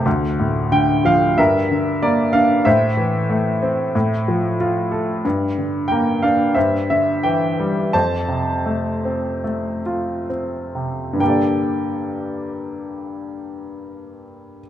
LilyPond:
<<
  \new Staff \with { instrumentName = "Grand piano" } { \time 4/4 \key g \dorian \tempo 4 = 89 << { r4 g''8 f''8 e''4 d''8 f''8 | e''2. r4 | r4 g''8 f''8 e''8 e''8 g''4 | a''2. r4 |
g''1 | } \\ { r2 bes'2 | c''2. r4 | r2 c''2 | c''2. r4 |
r1 | } >> }
  \new Staff \with { instrumentName = "Grand piano" } { \clef bass \time 4/4 \key g \dorian d,8 a,8 d8 f8 g,8 d8 bes8 d'8 | a,8 e8 a8 c'8 a,8 f8 f'8 a'8 | g,8 d8 bes8 d'8 g,8 d8 e8 g8 | f,8 c8 a8 c'8 a8 f'8 c'8 c8 |
<g, d bes g' a' d''>1 | }
>>